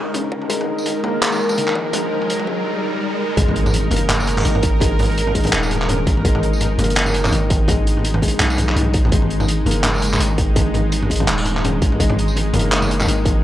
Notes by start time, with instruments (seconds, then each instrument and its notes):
Already playing: 808-style bass D#1, felt piano D#3 G#3 A#3, synth drone G#3 D#4 A#4, riser
0.14 felt piano C#4, closed hi-hat, mid tom
0.32 808-style bass G#1, kick
0.42 mid tom
0.50 808-style bass G#1, felt piano G#3, kick, closed hi-hat
0.61 mid tom
0.78 tambourine
0.86 closed hi-hat, mid tom
1.04 808-style bass F#1, felt piano A#3, mid tom
1.22 clap, closed hi-hat
1.32 mid tom, tambourine
1.49 mid tom, tambourine
1.57 808-style bass G#1, felt piano D#3, closed hi-hat
1.68 clap
1.75 kick, mid tom
1.93 felt piano G#3, kick, closed hi-hat, mid tom
2.22 mid tom
2.30 closed hi-hat
2.40 mid tom
2.47 felt piano G#3, kick
3.37 808-style bass G#1, synth drone G#3 D#4 A#4, felt piano G#3, kick, closed hi-hat, impact
3.48 mid tom
3.56 closed hi-hat
3.66 mid tom, tambourine
3.74 closed hi-hat
3.91 808-style bass F#1, felt piano A#3, closed hi-hat, mid tom
3.96 closed hi-hat
4.09 clap, closed hi-hat, mid tom
4.20 tambourine
4.27 closed hi-hat
4.37 clap, mid tom, tambourine
4.45 808-style bass G#1, felt piano D#3, closed hi-hat
4.55 mid tom
4.63 kick, closed hi-hat
4.80 felt piano G#3, kick, closed hi-hat, mid tom
4.99 closed hi-hat, mid tom
5.03 closed hi-hat
5.05 closed hi-hat
5.10 closed hi-hat
5.11 closed hi-hat
5.15 closed hi-hat
5.18 closed hi-hat
5.27 mid tom
5.35 felt piano G#3, kick, closed hi-hat
5.40 closed hi-hat
5.43 closed hi-hat, mid tom
5.47 closed hi-hat
5.53 808-style bass D#1, clap, closed hi-hat
5.63 tambourine
5.71 closed hi-hat, mid tom
5.82 clap
5.89 felt piano C#4, closed hi-hat, mid tom
6.07 808-style bass G#1, kick, closed hi-hat
6.17 mid tom
6.25 808-style bass G#1, felt piano G#3, kick, closed hi-hat
6.35 mid tom
6.43 closed hi-hat
6.53 tambourine
6.61 closed hi-hat, mid tom
6.78 808-style bass F#1, felt piano A#3, closed hi-hat, mid tom
6.84 closed hi-hat
6.90 closed hi-hat
6.95 clap, closed hi-hat
7.06 mid tom, tambourine
7.14 closed hi-hat
7.25 clap, mid tom, tambourine
7.32 808-style bass G#1, felt piano D#3, closed hi-hat
7.50 kick, closed hi-hat, mid tom
7.68 felt piano G#3, kick, closed hi-hat, mid tom
7.87 closed hi-hat
7.97 mid tom
7.99 mid tom
8.01 mid tom
8.03 closed hi-hat, mid tom
8.14 mid tom
8.22 felt piano G#3, kick, closed hi-hat
8.28 closed hi-hat
8.40 808-style bass B1, clap, closed hi-hat, mid tom
8.50 tambourine
8.58 closed hi-hat, mid tom
8.69 clap
8.76 808-style bass B1, felt piano D#4, closed hi-hat
8.81 mid tom
8.94 kick, closed hi-hat
9.05 mid tom
9.07 mid tom
9.09 mid tom
9.11 808-style bass G#1, felt piano G#3, kick, closed hi-hat, mid tom
9.13 mid tom
9.15 mid tom
9.18 mid tom
9.21 mid tom
9.22 mid tom
9.30 closed hi-hat
9.40 mid tom, tambourine
9.48 closed hi-hat
9.66 808-style bass F#1, felt piano A#3, closed hi-hat, mid tom
9.71 closed hi-hat
9.84 clap, closed hi-hat, mid tom
9.94 tambourine
9.96 tambourine
9.98 tambourine
10.00 tambourine
10.02 closed hi-hat, tambourine
10.04 tambourine
10.07 tambourine
10.10 mid tom, tambourine
10.13 clap, tambourine
10.20 808-style bass G#1, felt piano D#3, closed hi-hat
10.38 kick, closed hi-hat
10.56 felt piano G#3, kick, closed hi-hat, mid tom
10.74 closed hi-hat, mid tom
10.92 closed hi-hat
11.02 mid tom
11.10 felt piano G#3, kick, closed hi-hat
11.16 closed hi-hat
11.20 mid tom
11.22 mid tom
11.24 mid tom
11.26 808-style bass D#1, clap, closed hi-hat, mid tom
11.38 tambourine
11.45 closed hi-hat, mid tom
11.49 mid tom
11.52 mid tom
11.56 clap, mid tom
11.58 mid tom
11.61 felt piano C#4, closed hi-hat, mid tom
11.65 mid tom
11.82 808-style bass G#1, kick, closed hi-hat
11.92 mid tom
12.00 808-style bass G#1, felt piano G#3, kick, closed hi-hat
12.10 mid tom
12.19 closed hi-hat
12.28 tambourine
12.36 closed hi-hat, mid tom
12.54 808-style bass F#1, felt piano A#3, closed hi-hat, mid tom
12.59 closed hi-hat
12.72 clap, closed hi-hat
12.82 mid tom, tambourine
12.91 closed hi-hat
13.00 clap, mid tom, tambourine
13.07 808-style bass G#1, felt piano D#3, closed hi-hat
13.25 kick, closed hi-hat, mid tom